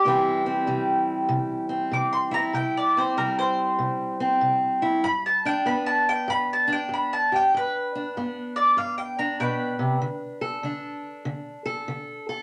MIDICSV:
0, 0, Header, 1, 3, 480
1, 0, Start_track
1, 0, Key_signature, 1, "major"
1, 0, Tempo, 621118
1, 45, Time_signature, 4, 2, 24, 8
1, 9602, End_track
2, 0, Start_track
2, 0, Title_t, "Mandolin"
2, 0, Program_c, 0, 25
2, 0, Note_on_c, 0, 67, 103
2, 832, Note_off_c, 0, 67, 0
2, 1494, Note_on_c, 0, 86, 85
2, 1640, Note_off_c, 0, 86, 0
2, 1644, Note_on_c, 0, 84, 83
2, 1799, Note_off_c, 0, 84, 0
2, 1808, Note_on_c, 0, 82, 102
2, 1962, Note_off_c, 0, 82, 0
2, 1968, Note_on_c, 0, 79, 93
2, 2122, Note_off_c, 0, 79, 0
2, 2143, Note_on_c, 0, 74, 93
2, 2289, Note_off_c, 0, 74, 0
2, 2305, Note_on_c, 0, 72, 91
2, 2450, Note_off_c, 0, 72, 0
2, 2456, Note_on_c, 0, 70, 88
2, 2606, Note_off_c, 0, 70, 0
2, 2617, Note_on_c, 0, 72, 101
2, 3543, Note_off_c, 0, 72, 0
2, 3894, Note_on_c, 0, 83, 110
2, 4045, Note_off_c, 0, 83, 0
2, 4065, Note_on_c, 0, 81, 87
2, 4210, Note_off_c, 0, 81, 0
2, 4223, Note_on_c, 0, 79, 111
2, 4369, Note_off_c, 0, 79, 0
2, 4378, Note_on_c, 0, 83, 87
2, 4527, Note_off_c, 0, 83, 0
2, 4532, Note_on_c, 0, 81, 103
2, 4684, Note_off_c, 0, 81, 0
2, 4705, Note_on_c, 0, 79, 107
2, 4851, Note_off_c, 0, 79, 0
2, 4868, Note_on_c, 0, 83, 120
2, 5012, Note_off_c, 0, 83, 0
2, 5046, Note_on_c, 0, 81, 98
2, 5182, Note_off_c, 0, 81, 0
2, 5198, Note_on_c, 0, 79, 97
2, 5337, Note_off_c, 0, 79, 0
2, 5360, Note_on_c, 0, 83, 90
2, 5498, Note_off_c, 0, 83, 0
2, 5510, Note_on_c, 0, 81, 90
2, 5653, Note_off_c, 0, 81, 0
2, 5686, Note_on_c, 0, 79, 96
2, 5821, Note_off_c, 0, 79, 0
2, 5849, Note_on_c, 0, 71, 105
2, 6293, Note_off_c, 0, 71, 0
2, 6615, Note_on_c, 0, 74, 98
2, 6765, Note_off_c, 0, 74, 0
2, 6784, Note_on_c, 0, 77, 102
2, 6930, Note_off_c, 0, 77, 0
2, 6938, Note_on_c, 0, 79, 90
2, 7087, Note_off_c, 0, 79, 0
2, 7099, Note_on_c, 0, 82, 80
2, 7247, Note_off_c, 0, 82, 0
2, 7264, Note_on_c, 0, 71, 81
2, 7268, Note_on_c, 0, 79, 75
2, 7721, Note_off_c, 0, 79, 0
2, 8663, Note_off_c, 0, 71, 0
2, 9602, End_track
3, 0, Start_track
3, 0, Title_t, "Steel-string acoustic guitar"
3, 0, Program_c, 1, 25
3, 38, Note_on_c, 1, 48, 76
3, 42, Note_on_c, 1, 52, 64
3, 46, Note_on_c, 1, 55, 61
3, 58, Note_on_c, 1, 60, 64
3, 59, Note_on_c, 1, 64, 70
3, 354, Note_off_c, 1, 60, 0
3, 357, Note_on_c, 1, 60, 59
3, 488, Note_off_c, 1, 48, 0
3, 517, Note_on_c, 1, 48, 66
3, 518, Note_off_c, 1, 55, 0
3, 522, Note_on_c, 1, 55, 56
3, 967, Note_off_c, 1, 48, 0
3, 994, Note_on_c, 1, 48, 82
3, 1298, Note_off_c, 1, 60, 0
3, 1307, Note_on_c, 1, 60, 61
3, 1446, Note_off_c, 1, 48, 0
3, 1480, Note_on_c, 1, 48, 68
3, 1778, Note_off_c, 1, 64, 0
3, 1787, Note_on_c, 1, 64, 62
3, 1929, Note_off_c, 1, 48, 0
3, 1940, Note_off_c, 1, 60, 0
3, 1942, Note_off_c, 1, 52, 0
3, 1958, Note_on_c, 1, 48, 78
3, 2295, Note_on_c, 1, 60, 58
3, 2408, Note_off_c, 1, 48, 0
3, 2451, Note_off_c, 1, 55, 0
3, 2451, Note_on_c, 1, 48, 66
3, 2454, Note_on_c, 1, 55, 59
3, 2894, Note_off_c, 1, 48, 0
3, 2927, Note_on_c, 1, 48, 71
3, 3238, Note_off_c, 1, 60, 0
3, 3248, Note_on_c, 1, 60, 61
3, 3372, Note_off_c, 1, 48, 0
3, 3410, Note_on_c, 1, 48, 73
3, 3711, Note_off_c, 1, 64, 0
3, 3726, Note_on_c, 1, 64, 66
3, 3854, Note_off_c, 1, 48, 0
3, 3871, Note_off_c, 1, 60, 0
3, 3890, Note_off_c, 1, 64, 0
3, 3894, Note_on_c, 1, 43, 79
3, 4215, Note_on_c, 1, 62, 65
3, 4335, Note_off_c, 1, 43, 0
3, 4368, Note_off_c, 1, 55, 0
3, 4371, Note_on_c, 1, 43, 67
3, 4371, Note_on_c, 1, 59, 56
3, 4815, Note_off_c, 1, 43, 0
3, 4852, Note_on_c, 1, 43, 85
3, 5156, Note_off_c, 1, 62, 0
3, 5159, Note_on_c, 1, 62, 67
3, 5294, Note_off_c, 1, 43, 0
3, 5324, Note_on_c, 1, 43, 66
3, 5657, Note_on_c, 1, 67, 58
3, 5770, Note_off_c, 1, 43, 0
3, 5787, Note_off_c, 1, 59, 0
3, 5795, Note_off_c, 1, 67, 0
3, 5830, Note_on_c, 1, 43, 83
3, 6144, Note_off_c, 1, 62, 0
3, 6147, Note_on_c, 1, 62, 57
3, 6263, Note_off_c, 1, 43, 0
3, 6313, Note_on_c, 1, 43, 66
3, 6315, Note_on_c, 1, 59, 56
3, 6745, Note_off_c, 1, 43, 0
3, 6776, Note_on_c, 1, 43, 71
3, 7100, Note_off_c, 1, 62, 0
3, 7103, Note_on_c, 1, 62, 65
3, 7216, Note_off_c, 1, 43, 0
3, 7264, Note_on_c, 1, 47, 59
3, 7563, Note_off_c, 1, 47, 0
3, 7566, Note_on_c, 1, 48, 66
3, 7718, Note_off_c, 1, 59, 0
3, 7730, Note_off_c, 1, 48, 0
3, 7741, Note_on_c, 1, 50, 73
3, 8047, Note_on_c, 1, 69, 67
3, 8178, Note_off_c, 1, 50, 0
3, 8217, Note_on_c, 1, 50, 62
3, 8224, Note_off_c, 1, 62, 0
3, 8228, Note_on_c, 1, 62, 54
3, 8656, Note_off_c, 1, 50, 0
3, 8695, Note_on_c, 1, 50, 76
3, 8998, Note_off_c, 1, 69, 0
3, 9007, Note_on_c, 1, 69, 69
3, 9135, Note_off_c, 1, 50, 0
3, 9180, Note_on_c, 1, 50, 69
3, 9480, Note_off_c, 1, 69, 0
3, 9497, Note_on_c, 1, 69, 70
3, 9602, Note_off_c, 1, 50, 0
3, 9602, Note_off_c, 1, 62, 0
3, 9602, Note_off_c, 1, 69, 0
3, 9602, End_track
0, 0, End_of_file